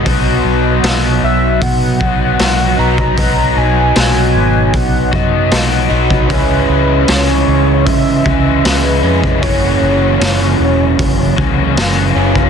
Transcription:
<<
  \new Staff \with { instrumentName = "Soft synth lead" } { \time 4/4 \key b \major \tempo 4 = 77 r4. e''8 fis''4. ais''8~ | ais''8 gis''8 gis''4 fis''8 dis''4 r8 | b'4 cis''4 e''4 b'4 | cis''2. r4 | }
  \new Staff \with { instrumentName = "Overdriven electric guitar" } { \time 4/4 \key b \major <b, fis b dis' fis'>2~ <b, fis b dis' fis'>8 <b, fis b dis' fis'>8 <b, fis b dis' fis'>4 | <b, fis b dis' fis'>2~ <b, fis b dis' fis'>8 <b, fis b dis' fis'>8 <b, fis b dis' fis'>4 | <cis e gis cis' e'>2~ <cis e gis cis' e'>8 <cis e gis cis' e'>8 <cis e gis cis' e'>4 | <fis, cis e ais cis' fis'>2~ <fis, cis e ais cis' fis'>8 <fis, cis e ais cis' fis'>8 <fis, cis e ais cis' fis'>4 | }
  \new Staff \with { instrumentName = "Overdriven electric guitar" } { \clef bass \time 4/4 \key b \major <b, fis b dis'>2.~ <b, fis b dis'>8 <b, fis b dis'>8 | <b, fis b dis'>2.~ <b, fis b dis'>8 <b, fis b dis'>8 | <cis e gis cis'>2.~ <cis e gis cis'>8 <cis e gis cis'>8 | <fis, cis e ais cis'>2.~ <fis, cis e ais cis'>8 <fis, cis e ais cis'>8 | }
  \new Staff \with { instrumentName = "Fingered electric bass" } { \clef bass \time 4/4 \key b \major b,,8 b,,8 b,,8 b,,8 b,8 b,,8 b,,8 b,,8 | b,,8 b,,8 b,,8 gis,,8 b,,8 fis,8 b,,8 b,,8 | cis,8 cis,8 cis,8 cis,8 cis8 cis,8 cis,8 eis,8 | fis,,8 fis,,8 fis,,8 e,,8 fis,,8 cis,8 fis,,8 fis,,8 | }
  \new DrumStaff \with { instrumentName = "Drums" } \drummode { \time 4/4 <hho bd>4 <hho sn>4 <hho bd>8 bd8 <hho sn>8. bd16 | <hho bd>4 <hho sn>4 <hho bd>8 bd8 <hho sn>8. bd16 | <hho bd>4 <hho sn>4 <hho bd>8 bd8 <hho sn>8. bd16 | <hho bd>4 <hho sn>4 <hho bd>8 bd8 <hho sn>8. bd16 | }
>>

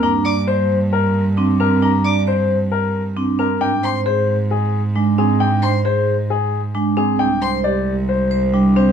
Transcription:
<<
  \new Staff \with { instrumentName = "Violin" } { \time 4/4 \key aes \lydian \tempo 4 = 134 r8 d'''8 r2. | r8 d'''8 r2. | r8 c'''8 r2. | r8 c'''8 r2. |
r8 c'''8 r2. | }
  \new Staff \with { instrumentName = "Grand piano" } { \time 4/4 \key aes \lydian bes''8 r8 c''8 r8 bes'8 r4 bes'8 | bes''8 r8 c''8 r8 bes'8 r4 bes'8 | g''8 r8 c''8 r8 aes'8 r4 aes'8 | g''8 r8 c''8 r8 aes'8 r4 aes'8 |
g''8 r8 d''8 r8 c''8 r4 c''8 | }
  \new Staff \with { instrumentName = "Vibraphone" } { \time 4/4 \key aes \lydian d'8 d''8 c''8 r4. d'8 c'8 | d'8 d''8 c''8 r4. d'8 c'8 | d'8 c''8 aes'8 r4. d'8 c'8 | d'8 c''8 aes'8 r4. d'8 c'8 |
d'8 c''8 g'8 r4 c''8 d'8 c'8 | }
  \new Staff \with { instrumentName = "Marimba" } { \clef bass \time 4/4 \key aes \lydian r2. c'8 r8 | r2. c'8 r8 | r2. aes8 r8 | r2. aes8 r8 |
r2. g8 r8 | }
  \new Staff \with { instrumentName = "Cello" } { \clef bass \time 4/4 \key aes \lydian g,1~ | g,1 | aes,1~ | aes,1 |
c,1 | }
>>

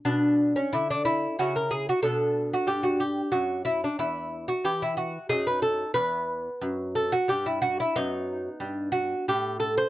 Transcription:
<<
  \new Staff \with { instrumentName = "Lute" } { \time 3/4 \key b \minor \tempo 4 = 91 << { d'8. cis'16 e'16 d'16 e'8 fis'16 ais'16 gis'16 fis'16 | a'8. fis'16 g'16 fis'16 g'8 fis'8 e'16 d'16 | e'8. fis'16 g'16 e'16 fis'8 gis'16 b'16 a'8 | b'4. a'16 fis'16 g'16 e'16 fis'16 e'16 |
\key b \phrygian dis'4. fis'8 g'8 a'16 c''16 | } \\ { r2 e'4 | d'2. | r2 dis'4 | b2. |
b2. | } >> }
  \new Staff \with { instrumentName = "Lute" } { \clef bass \time 3/4 \key b \minor b,4 d4 cis4 | b,4 g,4 fis,4 | e,4 e4 fis,4 | e,4 fis,4 g,4 |
\key b \phrygian fis,4 g,4 a,4 | }
>>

